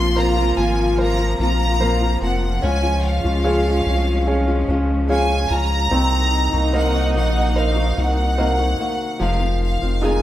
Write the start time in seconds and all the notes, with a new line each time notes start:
Already playing: A#1 C3 F3 A#3 C4 F4 C6
0.15 A#2 F3 A#3 C4 F4 A#4 C5 A#5
0.36 A#3 C4 F4
0.56 G#1 F3 A#3 C4 F4 G#5
0.97 F4 A#4 C5 A#5
1.18 A#3 C4 F4
1.38 A#1 F3 A#3 C4 F4 A#5
1.80 A#2 F3 A#3 C4 F4 A#4 C5
2.01 A#3 C4 F4
2.21 F1 F3 A#3 C4 F#5
2.62 C#2 C#3 F3 G#3 C#4 F4 G#5
2.83 G#3 C#4 F4
3.05 F5
3.24 C#2 G#3 C#4 F4
3.44 C#3 F3 G#3 C#4 F4 G#4 C#5 F5
3.66 G#3 C#4 F4
3.86 C2 F3 G#3 C#4 F4
4.27 C#4 G#4 C#5 F5
4.47 G#3 C#4 F4
4.67 C#2 F3 G#3 C#4 F4
5.09 C#3 F3 G#3 C#4 F4 G#4 C#5 F5 G#5
5.29 G#3 C#4 F4
5.49 C#2 F3 G#3 C#4 F4 A#5
5.90 C2 C3 D#3 A#3 C4 D#4 F#4
6.53 C2 A#3 D#4 F#4
6.73 C3 D#3 A#3 D#4 F#4 A#4 C5 D#5 F#5
6.93 A#3 D#4 F#4
7.14 A#1 D#3 A#3 D#4 F#4 F#5
7.55 A#4 C5 D#5 F5
7.76 A#3 D#4 F#4
7.96 C2 D#3 A#3 D#4 F#4 F#5
8.37 C3 D#3 A#3 D#4 F#4 A#4 C5 D#5
8.58 A#3 D#4 F#4
8.78 D#3 A#3 D#4 F#4
9.20 F1 F2 C3 D#3 F3 G#3 C4 F4 F5
9.40 D#3 G#3 C4 F4
9.63 F5
9.82 F1 D#3 G#3 C4 F4
10.02 F2 C3 D#3 G#3 C4 D#4 F4 G#4 G#5